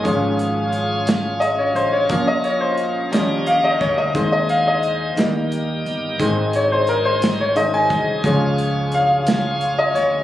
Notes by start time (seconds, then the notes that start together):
Already playing: G#4
0.03 G#1 F3 G#3 C#4 F4 F5, kick, closed hi-hat
0.39 closed hi-hat
0.73 closed hi-hat
1.07 snare, closed hi-hat
1.40 D#5, closed hi-hat
1.58 C#5
1.75 A1 C5, closed hi-hat
1.93 C#5
2.09 A#1 F3 A#3 C#4 F4 A#4 F5, kick, closed hi-hat
2.28 D#5
2.44 C#5, closed hi-hat
2.61 C5
2.78 closed hi-hat
3.11 D#2 F3 G3 A#3 C#4 D#4 G4 A#4 D#5, snare, closed hi-hat
3.46 F5, closed hi-hat
3.64 D#5
3.81 D2 C#5, kick, closed hi-hat
3.98 D#5
4.14 D#2 D#3 G#3 C4 D#4 G#4 C5, kick, closed hi-hat
4.32 D#5
4.49 F5, closed hi-hat
4.67 D#5
4.83 closed hi-hat
5.16 D#2 D#3 G3 A#3 D#4 G4 A#4, snare, closed hi-hat
5.52 closed hi-hat
5.85 G1, closed hi-hat
6.19 G#1 D#3 G#3 C4 D#4 G#4 C5, kick, closed hi-hat
6.53 C#5, closed hi-hat
6.72 C5
6.87 A#4, closed hi-hat
7.05 C5
7.22 snare, closed hi-hat
7.41 C#5
7.56 D#3 G#3 C4 D#5, closed hi-hat
7.74 G#5
7.90 C2, kick, closed hi-hat
8.24 C#2 F3 G#3 C#4 F4 C#5 F5, kick, closed hi-hat
8.58 closed hi-hat
8.92 F5, closed hi-hat
9.27 snare, closed hi-hat
9.61 closed hi-hat
9.79 D#5
9.94 D2 C#5, closed hi-hat